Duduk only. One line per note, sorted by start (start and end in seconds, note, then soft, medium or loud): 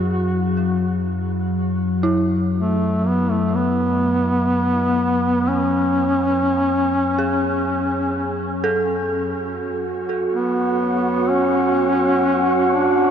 2.58 3.08 A3 medium
3.07 3.32 B3 medium
3.31 3.57 A3 medium
3.55 5.50 B3 medium
5.48 8.39 C#4 loud
10.33 11.31 B3 medium
11.29 12.77 C#4 loud
12.75 13.11 D4 medium